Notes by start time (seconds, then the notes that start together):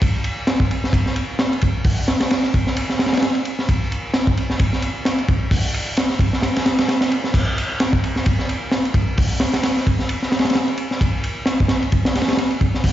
0.02 kick, ride
0.24 ride
0.47 snare, ride
0.60 kick
0.71 ride
0.84 snare
0.93 kick, ride
1.06 snare
1.16 ride
1.39 snare, ride
1.53 ride
1.61 kick, ride
1.85 kick, open hi-hat
2.08 snare, ride
2.20 snare, ride
2.31 snare, ride
2.43 snare
2.54 kick, ride
2.67 snare
2.76 ride
2.90 snare
2.99 snare, ride
3.06 snare, ride
3.13 snare, ride
3.17 snare, ride
3.22 snare, ride
3.35 ride
3.45 ride
3.59 snare
3.69 kick, ride
3.92 ride
4.14 snare, ride
4.27 kick
4.37 ride
4.50 snare
4.59 kick, ride
4.73 snare
4.82 ride
5.05 snare, ride
5.18 ride
5.28 kick, ride
5.51 kick, open hi-hat
5.74 ride
5.97 snare, ride
6.10 snare
6.19 kick, ride
6.33 snare
6.43 snare, ride
6.56 snare, ride
6.66 snare, ride
6.78 snare, ride
6.89 snare, ride
7.01 snare, ride
7.12 ride
7.24 snare
7.34 kick, crash, ride
7.58 ride
7.80 snare, ride
7.93 kick
8.04 ride
8.16 snare
8.26 kick, ride
8.39 snare
8.49 ride
8.72 snare, ride
8.85 ride
8.94 kick, ride
9.18 kick, open hi-hat
9.40 snare, ride
9.54 snare, ride
9.63 snare, ride
9.77 snare
9.87 kick, ride
9.99 snare
10.09 ride
10.22 snare
10.32 snare, ride
10.39 snare, ride
10.45 snare, ride
10.50 snare, ride
10.55 snare, ride
10.68 ride
10.78 ride
10.91 snare
11.01 kick, ride
11.24 ride
11.46 snare, ride
11.60 kick
11.68 snare, ride
11.82 ride
11.92 kick, ride
12.05 snare, ride
12.15 snare, ride
12.21 snare, ride
12.28 snare, ride
12.33 snare, ride
12.37 snare, ride
12.51 ride
12.61 kick, ride
12.74 snare
12.84 kick, open hi-hat